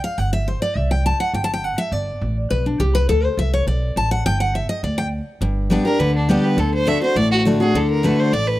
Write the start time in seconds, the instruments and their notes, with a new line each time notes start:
0.04 steel-string acoustic guitar F5
0.18 upright bass G1, steel-string acoustic guitar F#5
0.33 steel-string acoustic guitar E5
0.48 steel-string acoustic guitar C5
0.62 steel-string acoustic guitar D5
0.75 upright bass C2, steel-string acoustic guitar E5
0.91 steel-string acoustic guitar G5
1.06 steel-string acoustic guitar A5
1.20 steel-string acoustic guitar F#5
1.34 upright bass G1, steel-string acoustic guitar G5
1.44 steel-string acoustic guitar A5
1.54 steel-string acoustic guitar G5
1.64 steel-string acoustic guitar F#5
1.78 steel-string acoustic guitar E5
1.92 upright bass G1, steel-string acoustic guitar D5
2.21 upright bass A1
2.50 upright bass B1, steel-string acoustic guitar B4
2.66 steel-string acoustic guitar D4
2.80 upright bass C2, steel-string acoustic guitar G4
2.95 steel-string acoustic guitar B4
3.09 upright bass D2, steel-string acoustic guitar A4
3.24 steel-string acoustic guitar C5
3.37 upright bass C2, steel-string acoustic guitar E5
3.54 steel-string acoustic guitar C#5
3.67 upright bass B1, steel-string acoustic guitar D5
3.96 upright bass A1, steel-string acoustic guitar A5
4.11 steel-string acoustic guitar F#5
4.26 upright bass G1, steel-string acoustic guitar G5
4.40 steel-string acoustic guitar F#5
4.55 steel-string acoustic guitar E5
4.69 steel-string acoustic guitar D#5
4.83 upright bass D2, steel-string acoustic guitar D5
4.98 steel-string acoustic guitar G5
5.41 upright bass G1, steel-string acoustic guitar G2
5.70 steel-string acoustic guitar G3 B3 D4 G4
5.85 steel-string acoustic guitar D4 G4, fiddle A#4
5.99 upright bass D2, steel-string acoustic guitar D3, fiddle B4
6.16 fiddle D4
6.29 steel-string acoustic guitar G3 B3 D4 G4, fiddle G4
6.44 fiddle B4
6.57 upright bass D2, steel-string acoustic guitar D3, fiddle A4
6.74 fiddle C5
6.86 steel-string acoustic guitar D3 A3 D4 F#4, fiddle E5
7.02 steel-string acoustic guitar D4 F#4, fiddle C5
7.16 upright bass A1, steel-string acoustic guitar A2, fiddle D5
7.31 fiddle F#4
7.45 steel-string acoustic guitar D3 A3 D4 F#4
7.60 steel-string acoustic guitar D4 F#4, fiddle G#4
7.74 upright bass D2, steel-string acoustic guitar D3, fiddle A4
7.90 fiddle A#4
8.03 steel-string acoustic guitar D3 A3 D4 F#4, fiddle B4
8.19 fiddle C5
8.32 upright bass A1, steel-string acoustic guitar A2, fiddle D5
8.47 fiddle B4